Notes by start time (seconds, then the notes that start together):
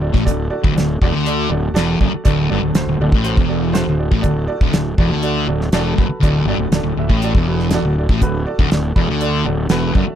Already playing: D1
0.01 F#4 A4 D5
0.14 A1 A2, kick, snare
0.24 D1 D2 F#4 A4 D5, kick, closed hi-hat
0.50 F#4 A4 D5
0.63 D1 D2, kick
0.75 D1 D2 F#4 A4 D5, snare, closed hi-hat
1.01 E1 E2 F#4 A4 D5, kick
1.11 D2 D3
1.26 F#4 A4 D5, closed hi-hat
1.50 D1 D2 F#4 A4 D5 F#5
1.74 E1 E2 F#4 A4 D5 A5, snare, closed hi-hat
2.00 F#1 F#2 F#4 A4 D5, kick
2.13 muted fingered electric bass stroke, muted distorted electric guitar stroke
2.24 D1 D2 F#4 A4 D5, kick, closed hi-hat
2.50 G1 G2 F#4 A4 D5
2.63 D1 D2
2.75 D1 D2 F#4 A4 C5, snare, closed hi-hat
2.87 D1 D2
3.00 D1 D2 F#4 A4 D5
3.12 A1 A2, kick
3.24 F#4 A4 C5, closed hi-hat
3.37 E1 E2, kick
3.49 F#4 A4 D5
3.73 F#4 A4 C5, snare, closed hi-hat
3.87 D1 D2
3.99 F#4 A4 D5
4.11 A1 A2, kick
4.22 D1 F#4 A4 D5, kick, closed hi-hat
4.26 D2
4.48 F#4 A4 D5
4.60 D1 D2, kick
4.72 D1 F#4 A4 D5, snare, closed hi-hat
4.76 D2
4.97 E1 E2 F#4 A4 D5, kick
5.10 D2 D3
5.22 F#4 A4 D5, closed hi-hat
5.47 D1 D2 F#4 A4 D5
5.61 snare
5.72 E1 E2 F#4 A4 D5 A5, snare, closed hi-hat
5.96 F#1 F#2 F#4 A4 B4, kick
6.09 muted fingered electric bass stroke, muted distorted electric guitar stroke
6.20 D1 D2 F#4 A4 D5, kick, closed hi-hat
6.45 G1 G2 F#4 A4 D5
6.58 D1 D2
6.71 D1 D2 F#4 A4 D5, snare, closed hi-hat
6.83 D1 D2
6.97 D1 D2 F#4 A4 E5
7.09 A1 A2, kick
7.22 F#4 A4 D5, closed hi-hat
7.34 E1 E2, kick
7.48 F#4 A4 B4
7.59 snare
7.71 F#4 A4 D5, snare, closed hi-hat
7.83 D1 D2
7.98 F#4 A4 D5
8.09 A1 A2, kick
8.21 D1 D2 F#4 A4 B4, kick, closed hi-hat
8.46 F#4 A4 D5
8.58 D1 D2, kick
8.71 D1 D2 F#4 A4 D5, snare, closed hi-hat
8.95 E1 E2 F#4 A4 D5 B5, kick
9.08 D2 D3
9.21 F#4 A4 D5 A5, closed hi-hat
9.45 D1 D2 F#4 A4 D5 F#5
9.69 E1 E2 F#4 A4 B4 F#5, snare, closed hi-hat
9.95 F#1 F#2 F#4 A4 D5 E5, kick
10.07 muted distorted electric guitar stroke, muted fingered electric bass stroke